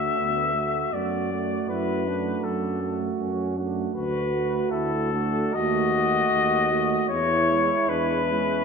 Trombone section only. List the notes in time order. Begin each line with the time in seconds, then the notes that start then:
Already playing: D4
0.17 B3
0.55 A3
0.92 B3
1.31 A3
1.69 E4
2.08 D4
3.19 C#4
3.57 D4
3.96 F#4
4.71 E4
5.12 D4
5.54 F#4
7.09 E4
7.88 D4
8.31 C#4